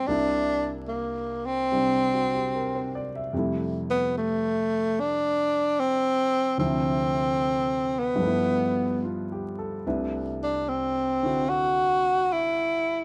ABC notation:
X:1
M:4/4
L:1/16
Q:"Swing" 1/4=74
K:Clyd
V:1 name="Grand piano"
z8 z2 F G _B c d e | z16 | z12 (3=F2 G2 A2- | A z12 z3 |]
V:2 name="Grand piano"
[C,,C,_B,DE]8 [C,G,CD]8 | [=F,,C,G,A,E]16 | [D,,C,D,=F,E]8 [G,,F,A,B,E]8 | [C,,C,A,DEB]6 [D,CEF]8- [D,CEF]2 |]
V:3 name="Tenor saxophone"
D2 z2 _B,2 C8 z2 | z2 B,2 A,4 D4 C4 | C6 B,6 z4 | z2 D2 C4 F4 E4 |]